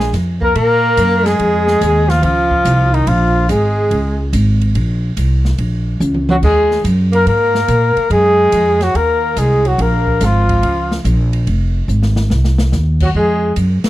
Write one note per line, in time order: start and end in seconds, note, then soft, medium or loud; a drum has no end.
0.00 0.12 A#1 medium
0.00 0.11 G#3 medium
0.00 0.12 G#4 loud
0.13 0.54 F2 medium
0.13 kick soft
0.13 snare soft
0.13 hi-hat pedal medium
0.13 ride medium
0.41 0.54 A#3 medium
0.41 0.56 A#4 loud
0.41 kick medium
0.55 0.96 A#2 medium
0.55 1.25 A#3 medium
0.55 1.28 A#4 loud
0.55 kick soft
0.55 ride medium
0.97 1.38 F#2 medium
0.97 kick soft
0.97 hi-hat pedal medium
0.97 ride medium
1.23 2.10 G#3 medium
1.23 2.11 G#4 loud
1.23 snare soft
1.23 ride soft
1.39 1.80 F2 medium
1.39 kick soft
1.39 ride medium
1.68 snare soft
1.81 2.22 D#2 medium
1.81 kick soft
1.81 hi-hat pedal medium
1.81 ride medium
2.09 2.21 F3 medium
2.09 2.23 F4 medium
2.09 snare soft
2.09 ride soft
2.22 2.64 C#2 medium
2.22 2.94 F3 medium
2.22 2.96 F4 medium
2.22 kick soft
2.22 ride medium
2.51 kick medium
2.65 3.06 C2 medium
2.65 kick soft
2.65 hi-hat pedal medium
2.65 ride medium
2.93 3.09 D#3 medium
2.93 3.09 D#4 medium
2.93 ride soft
3.07 3.48 A#1 medium
3.07 3.49 F3 medium
3.07 3.50 F4 loud
3.07 kick soft
3.07 ride medium
3.49 3.90 G#1 medium
3.49 4.29 G#3 medium
3.49 4.30 G#4 medium
3.49 kick soft
3.49 hi-hat pedal medium
3.49 ride medium
3.91 4.32 C#2 medium
3.91 kick soft
3.91 ride medium
4.33 4.74 G#1 medium
4.33 kick soft
4.33 hi-hat pedal soft
4.33 ride medium
4.61 ride soft
4.75 5.16 A#1 medium
4.75 kick soft
4.75 ride medium
5.17 5.58 C2 medium
5.17 kick soft
5.17 hi-hat pedal medium
5.17 ride medium
5.45 snare soft
5.58 6.00 A#1 medium
5.58 kick soft
5.58 ride medium
6.00 6.42 C#2 medium
6.00 hi-hat pedal medium
6.00 mid tom soft
6.14 mid tom medium
6.29 6.36 F#3 medium
6.29 6.37 F#4 medium
6.29 mid tom medium
6.42 6.84 D#2 medium
6.42 6.83 G#3 medium
6.42 6.83 G#4 loud
6.42 kick medium
6.42 crash medium
6.71 snare soft
6.84 7.26 F#2 medium
6.84 kick soft
6.84 hi-hat pedal soft
6.84 ride medium
7.12 7.26 A#3 medium
7.12 7.27 A#4 loud
7.12 ride medium
7.26 7.68 G#2 medium
7.26 8.07 A#3 medium
7.26 8.08 A#4 loud
7.26 kick soft
7.26 ride medium
7.55 snare medium
7.68 7.95 A#2 medium
7.68 kick soft
7.68 hi-hat pedal medium
7.68 ride medium
7.97 muted upright bass stroke soft
7.97 ride soft
8.10 8.51 F#2 medium
8.10 8.83 G#3 medium
8.10 8.85 G#4 loud
8.10 kick soft
8.10 ride medium
8.52 8.93 F2 medium
8.52 kick soft
8.52 hi-hat pedal soft
8.52 ride medium
8.81 8.98 F#3 medium
8.81 8.98 F#4 medium
8.81 snare soft
8.81 ride soft
8.94 9.35 D#2 medium
8.94 9.39 A#3 medium
8.94 9.40 A#4 loud
8.94 kick soft
8.94 ride medium
9.36 9.78 C2 medium
9.36 9.68 G#3 medium
9.36 9.69 G#4 medium
9.36 kick soft
9.36 hi-hat pedal medium
9.36 ride medium
9.65 9.82 F#3 medium
9.65 9.83 F#4 medium
9.65 ride soft
9.78 10.19 A#1 medium
9.78 10.25 A#3 medium
9.78 10.26 A#4 loud
9.78 kick soft
9.78 ride medium
10.07 kick soft
10.20 10.61 G#1 medium
10.20 11.06 F3 medium
10.20 kick soft
10.20 snare soft
10.20 hi-hat pedal medium
10.20 ride medium
10.24 11.07 F4 medium
10.49 kick medium
10.49 ride medium
10.62 11.03 C#2 medium
10.62 kick soft
10.62 ride medium
10.91 snare medium
11.04 11.45 A#1 medium
11.04 kick soft
11.04 hi-hat pedal medium
11.04 ride medium
11.33 ride medium
11.47 11.88 F1 medium
11.47 kick soft
11.47 ride medium
11.88 12.29 G#1 medium
11.88 hi-hat pedal medium
12.03 snare medium
12.16 snare medium
12.30 12.71 C2 medium
12.30 snare medium
12.44 snare medium
12.58 snare medium
12.72 13.13 D#2 medium
12.72 snare medium
12.72 hi-hat pedal medium
13.00 13.08 F#3 medium
13.00 kick medium
13.00 crash medium
13.04 13.10 F#4 medium
13.15 13.55 F2 medium
13.15 13.54 G#3 medium
13.15 13.56 G#4 medium
13.56 13.83 F#2 medium
13.56 kick soft
13.56 hi-hat pedal medium
13.56 ride medium
13.84 muted upright bass stroke soft
13.84 snare medium
13.84 ride medium